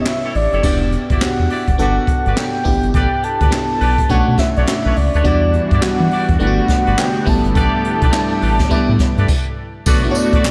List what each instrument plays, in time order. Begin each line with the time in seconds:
Already playing: fm electric piano B3 C#4 E4 G4
0.01 soft synth lead D#5, snare
0.06 soft synth lead E5, clap
0.23 horn section E4 G4 A4 C#5
0.35 analog synth bass A1, soft synth lead D5, open hi-hat
0.52 analog synth bass F#1, horn section E4 G4 A4 C#5, closed hi-hat
0.63 analog synth bass E1, fm electric piano B3 D4 F#4 G4, horn section E4 F#4 G4 D5, kick, crash
0.92 closed hi-hat
1.10 analog synth bass G1, horn section E4 F#4 G4 D5, kick, closed hi-hat
1.21 analog synth bass E2, fm electric piano B3 D4 F#4 G4, soft synth lead F#5, snare, clap, closed hi-hat
1.39 analog synth bass E2
1.50 horn section E4 F#4 G4 D5, open hi-hat
1.68 analog synth bass E1, kick, closed hi-hat
1.78 analog synth bass G1, fm electric piano B3 D4 F#4 A4, horn section F#4 G4 B4 D5, soft synth lead F#5, closed hi-hat
2.07 kick, closed hi-hat
2.25 analog synth bass G1, horn section F#4 G4 B4 D5, closed hi-hat
2.36 fm electric piano B3 D4 F#4 A4, soft synth lead G5, snare, clap
2.64 analog synth bass A1, fm electric piano B3 D4 E4 G4, kick, open hi-hat
2.83 analog synth bass G1, closed hi-hat
2.94 analog synth bass A1, horn section G4 A4 B4 D5, soft synth lead G5, kick, closed hi-hat
3.23 soft synth lead A5, closed hi-hat
3.41 analog synth bass D2, horn section G4 A4 B4 D5, kick, closed hi-hat
3.51 fm electric piano B3 D4 E4 G4, snare, clap, closed hi-hat
3.81 analog synth bass B1, horn section G4 A4 B4 D5, open hi-hat
3.98 kick, closed hi-hat
4.09 analog synth bass B1, fm electric piano A3 C#4 D4 F#4, horn section D4 A4 B4 C#5, soft synth lead F#5, kick, closed hi-hat
4.28 analog synth bass B2
4.38 soft synth lead E5, kick, snare, closed hi-hat
4.56 analog synth bass B1, horn section D4 A4 B4 C#5, soft synth lead D5, closed hi-hat
4.67 fm electric piano A3 C#4 D4 F#4, soft synth lead E5, snare, clap
4.85 analog synth bass B1, horn section D4 A4 B4 C#5
4.96 analog synth bass C#2, soft synth lead D5, open hi-hat
5.13 analog synth bass D2, horn section D4 A4 B4 C#5, closed hi-hat
5.24 analog synth bass E2, analog synth pad E3 G3 D4 F#4, fm electric piano G3 B3 D4 F#4, horn section E4 F#4 G4 D5, kick, closed hi-hat
5.53 closed hi-hat
5.71 analog synth bass G2, horn section E4 F#4 G4 D5, kick, closed hi-hat
5.81 analog synth bass E3, fm electric piano G3 B3 D4 F#4, soft synth lead F#5, snare, clap, closed hi-hat
6.00 analog synth bass E3
6.11 horn section E4 F#4 G4 D5, open hi-hat
6.29 analog synth bass E2, kick, closed hi-hat
6.39 analog synth bass G1, analog synth pad D3 B3, fm electric piano A3 B3 D4 E4, horn section F#4 G4 B4 D5, soft synth lead F#5, closed hi-hat
6.47 fm electric piano F#4
6.68 kick, snare, closed hi-hat
6.86 analog synth bass G1, horn section F#4 G4 B4 D5, closed hi-hat
6.97 fm electric piano A3 B3 D4 F#4, soft synth lead G5, snare, clap
7.25 analog synth bass A1, fm electric piano G3 B3 D4 E4, analog synth pad A3 G4, soft synth lead A5, kick, open hi-hat
7.44 analog synth bass G1, closed hi-hat
7.55 analog synth bass A1, horn section G4 A4 B4 D5, kick, closed hi-hat
7.84 closed hi-hat
8.02 analog synth bass B1, horn section G4 A4 B4 D5, kick, closed hi-hat
8.12 fm electric piano G3 B3 D4 E4, snare, clap, closed hi-hat
8.42 analog synth bass A1, horn section G4 A4 B4 D5, open hi-hat
8.59 kick, snare, closed hi-hat
8.69 analog synth bass A2, fm electric piano G3 B3 D4 E4, horn section G4 A4 B4 D5, kick, closed hi-hat
8.89 analog synth bass A2
8.99 kick, snare, closed hi-hat
9.17 analog synth bass G2, horn section G4 A4 B4 D5, closed hi-hat
9.28 kick, crash
9.85 analog synth bass B1, analog synth pad D3 A3 B3 F#4, horn section F#4 A4 B4 D5, kick, crash, tambourine
10.03 fm electric piano A3 B3 D4 E4
10.11 fm electric piano F#4, soft synth lead C#5, closed hi-hat, tambourine
10.16 soft synth lead D5
10.33 analog synth bass B2, horn section F#4 A4 B4 D5, kick, closed hi-hat
10.44 analog synth bass B2, snare, clap, tambourine